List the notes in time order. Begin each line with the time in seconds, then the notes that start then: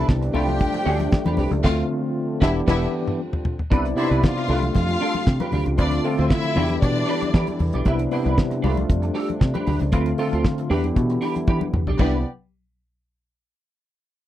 Already playing: C3 E3 G3 B3 D4 E4
0.08 C2, muted clean electric guitar stroke, kick, snare
0.22 muted clean electric guitar stroke, closed hi-hat
0.34 C2 C3 F3 A3 D4 F4 G4 B4 G5, open hi-hat, low conga
0.48 muted clean electric guitar stroke, closed hi-hat, high conga
0.60 kick, closed hi-hat, low conga
0.74 muted clean electric guitar stroke, closed hi-hat, muted conga
0.85 D2 A3 D4 G4 A4, open hi-hat
0.99 muted clean electric guitar stroke, closed hi-hat, high conga
1.12 muted clean electric guitar stroke, kick, snare, muted conga
1.26 E2 D4 G4 B4, closed hi-hat, high conga
1.37 C2 D4 G4 B4, open hi-hat, high conga, low conga
1.51 C#2, muted clean electric guitar stroke, closed hi-hat, high conga
1.63 D2 D3 A3 C4 F4 F5, kick, snare, crash
2.41 E1 E3 G3 B3 D4 E4 G4 E5, kick, snare
2.66 E1 E3 B3 D4 E4 G4 E5, kick, snare, crash
3.07 mid tom
3.19 D3 F3 C4 F4
3.33 floor tom
3.45 floor tom
3.59 floor tom
3.70 C2 C3 G3 B3 D4 E4 B4 D5, kick, closed hi-hat
3.85 muted clean electric guitar stroke, closed hi-hat
3.96 C3 B3 D4 D#4 E4 C5 D5 E5, open hi-hat
4.04 E4
4.10 C2 D4 E4 B4 D5, closed hi-hat
4.23 F4 F5, muted clean electric guitar stroke, kick, snare, muted conga
4.37 muted clean electric guitar stroke, closed hi-hat
4.48 C2 D3 A3 C4 D4 F4 G4 B4, open hi-hat, low conga
4.62 muted clean electric guitar stroke, closed hi-hat, high conga
4.75 F2 F4 F5, kick, closed hi-hat, muted conga, low conga
4.89 muted clean electric guitar stroke, closed hi-hat, muted conga
5.01 D4 G4 A4, open hi-hat
5.15 muted clean electric guitar stroke, closed hi-hat, high conga
5.26 C3, muted clean electric guitar stroke, kick, snare, muted conga
5.40 D4 G4 B4, closed hi-hat, muted conga, high conga
5.52 D2 D4 G4 B4, open hi-hat, high conga, low conga
5.66 C#2, muted clean electric guitar stroke, closed hi-hat, high conga
5.78 D2 D3 F3 A3 C4 D4 F4 B4 D5, kick, closed hi-hat, muted conga
5.91 muted clean electric guitar stroke, closed hi-hat, muted conga
6.04 D3 A3 C4 F4 A4, open hi-hat
6.18 D2 C4 F4 A4 C5, closed hi-hat
6.30 E4 E5, muted clean electric guitar stroke, kick, snare, muted conga
6.43 muted clean electric guitar stroke, closed hi-hat, muted conga
6.55 E2 E3 G3 B3 D4 E4 F4 G4 B4, open hi-hat, low conga
6.63 G4
6.70 muted clean electric guitar stroke, closed hi-hat, high conga
6.82 B2 D4 D5, kick, closed hi-hat, low conga
6.95 muted clean electric guitar stroke, closed hi-hat
7.08 D4 G4 B4, open hi-hat
7.22 muted clean electric guitar stroke, closed hi-hat, high conga
7.34 E3 D4 G4 B4, kick, snare, muted conga
7.47 muted clean electric guitar stroke, closed hi-hat, high conga
7.59 E2, muted clean electric guitar stroke, open hi-hat, high conga, low conga
7.73 B1 D4 G4 D5, closed hi-hat, high conga
7.85 C2 C3 B3 D4 E4 B4, kick, closed hi-hat, muted conga
7.99 muted clean electric guitar stroke, closed hi-hat, muted conga
8.11 C3 B3 D4 E4 C5, open hi-hat
8.25 C2 D4 E4 B4, closed hi-hat
8.37 muted clean electric guitar stroke, kick, snare
8.51 muted clean electric guitar stroke, closed hi-hat, muted conga
8.62 C2 C3 F3 G#3 A3 D4 F4 G4 B4, open hi-hat, low conga
8.69 A3
8.77 muted clean electric guitar stroke, closed hi-hat, high conga
8.89 F2, kick, closed hi-hat, muted conga, low conga
9.02 muted clean electric guitar stroke, closed hi-hat
9.14 D4 G4 A4, open hi-hat
9.28 muted clean electric guitar stroke, closed hi-hat, high conga
9.40 C3, muted clean electric guitar stroke, kick, snare, muted conga
9.54 D4 G4 B4, closed hi-hat, muted conga, high conga
9.66 D2 D4 G4 B4, open hi-hat, high conga, low conga
9.80 C#2, muted clean electric guitar stroke, closed hi-hat, high conga
9.92 D2 D3 A3 C4 F4 B4, kick, closed hi-hat
10.06 muted clean electric guitar stroke, closed hi-hat, muted conga
10.18 D3 A3 C4 F4 A4, open hi-hat
10.33 D2 C4 F4 A4, closed hi-hat
10.44 muted clean electric guitar stroke, kick, snare, muted conga
10.58 muted clean electric guitar stroke, closed hi-hat
10.69 E2 D3 E3 G3 B3 D4 E4 G4 B4, open hi-hat
10.84 muted clean electric guitar stroke, closed hi-hat, high conga
10.96 B2, muted clean electric guitar stroke, kick, closed hi-hat, low conga
11.10 muted clean electric guitar stroke, closed hi-hat
11.21 D4 G4 B4, open hi-hat
11.35 muted clean electric guitar stroke, closed hi-hat, high conga
11.47 E3 D4 G4 B4, kick, high tom, muted conga
11.61 muted clean electric guitar stroke, muted conga, high conga
11.73 E2, muted clean electric guitar stroke, mid tom, high conga, low conga
11.87 B1 D4 G4 D5, floor tom, high conga
11.99 C2 C3 E3 G3 B3 D4 E4 G4 B4 D5, kick, crash, high conga